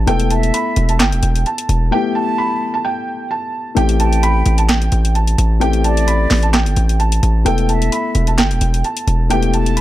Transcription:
0.07 808-style bass E1, grand piano A3 B3 E4 A4, felt piano G5, closed hi-hat
0.20 closed hi-hat
0.30 flute E5, felt piano A5, closed hi-hat
0.43 closed hi-hat
0.54 felt piano B5, closed hi-hat
0.76 808-style bass E1, closed hi-hat
0.89 felt piano A5, closed hi-hat
1.00 808-style bass G1, felt piano G5, snare, clap, closed hi-hat
1.12 808-style bass E1, closed hi-hat
1.23 808-style bass E1, closed hi-hat
1.36 closed hi-hat
1.46 felt piano A5, closed hi-hat
1.58 closed hi-hat
1.69 808-style bass E1, closed hi-hat
1.91 grand piano A3 B3 E4 G4, felt piano G5
2.15 flute A5, felt piano A5
2.38 felt piano B5
2.74 felt piano A5
2.85 felt piano G5
3.31 felt piano A5
3.75 808-style bass A1, grand piano A3 C4 E4 G4, felt piano G5, closed hi-hat
3.89 closed hi-hat
4.00 flute G5, felt piano A5, closed hi-hat
4.13 closed hi-hat
4.23 felt piano B5, closed hi-hat
4.46 808-style bass A1, closed hi-hat
4.58 felt piano A5, closed hi-hat
4.69 felt piano G5, snare, clap, closed hi-hat
4.82 closed hi-hat
4.92 808-style bass A1, closed hi-hat
5.05 closed hi-hat
5.15 felt piano A5, closed hi-hat
5.27 closed hi-hat
5.38 808-style bass A1, closed hi-hat
5.60 grand piano A3 C4 E4 G4, felt piano G5, closed hi-hat
5.73 closed hi-hat
5.84 flute D5, felt piano A5, closed hi-hat
5.97 closed hi-hat
6.07 felt piano B5, closed hi-hat
6.30 808-style bass A1, snare, clap, open hi-hat
6.43 felt piano A5, closed hi-hat
6.53 felt piano G5, snare, clap, closed hi-hat
6.66 808-style bass G1, closed hi-hat
6.76 808-style bass A1, closed hi-hat
6.89 closed hi-hat
7.00 felt piano A5, closed hi-hat
7.12 closed hi-hat
7.23 808-style bass A1, closed hi-hat
7.45 808-style bass E1, grand piano A3 B3 E4 A4, felt piano G5, closed hi-hat
7.58 closed hi-hat
7.69 flute E5, felt piano A5, closed hi-hat
7.82 closed hi-hat
7.92 felt piano B5, closed hi-hat
8.15 808-style bass E1, closed hi-hat
8.27 felt piano A5, closed hi-hat
8.38 808-style bass G1, felt piano G5, snare, clap, closed hi-hat
8.50 808-style bass E1, closed hi-hat
8.61 808-style bass E1, closed hi-hat
8.74 closed hi-hat
8.84 felt piano A5, closed hi-hat
8.97 closed hi-hat
9.08 808-style bass E1, closed hi-hat
9.30 grand piano A3 B3 E4 G4, felt piano G5, closed hi-hat
9.43 closed hi-hat
9.53 flute A5, felt piano A5, closed hi-hat
9.66 closed hi-hat
9.77 808-style bass D1, felt piano B5, closed hi-hat

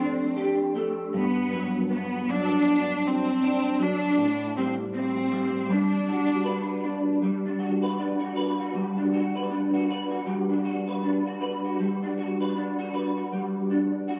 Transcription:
Already playing: clean electric guitar F3 A3 G4, cello C4
0.00 clean electric guitar D4
0.36 clean electric guitar G4
0.75 clean electric guitar A3
1.13 clean electric guitar G2
1.18 cello B3
1.52 clean electric guitar F#3
1.89 clean electric guitar B3, cello B3
2.28 clean electric guitar F#3, cello D4
2.67 clean electric guitar D4
3.07 cello C4
3.43 clean electric guitar D4
3.79 clean electric guitar F#3, cello D4
4.18 clean electric guitar A2
4.57 clean electric guitar G3, cello C4
4.93 clean electric guitar C4, cello C4
5.31 clean electric guitar G3
5.69 clean electric guitar G3, cello D4
6.08 clean electric guitar F#4
6.45 clean electric guitar B4
6.84 clean electric guitar D4
7.22 clean electric guitar G3
7.45 clean electric guitar D4
7.59 clean electric guitar F#4
7.82 clean electric guitar B4
7.98 clean electric guitar D4
8.19 clean electric guitar F#4
8.36 clean electric guitar B4
8.60 clean electric guitar F#4
8.74 clean electric guitar G3
8.97 clean electric guitar D4
9.13 clean electric guitar F#4
9.35 clean electric guitar B4
9.50 clean electric guitar D4
9.74 clean electric guitar F#4
9.90 clean electric guitar B4
10.11 clean electric guitar F#4
10.26 clean electric guitar G3
10.49 clean electric guitar D4
10.64 clean electric guitar F#4
10.88 clean electric guitar B4
11.03 clean electric guitar D4
11.26 clean electric guitar F#4
11.41 clean electric guitar B4
11.64 clean electric guitar F#4
11.79 clean electric guitar G3
12.03 clean electric guitar D4
12.18 clean electric guitar F#4
12.41 clean electric guitar B4
12.55 clean electric guitar D4
12.79 clean electric guitar F#4
12.94 clean electric guitar B4
13.17 clean electric guitar F#4
13.32 clean electric guitar G3
13.70 clean electric guitar D4
14.08 clean electric guitar F#4

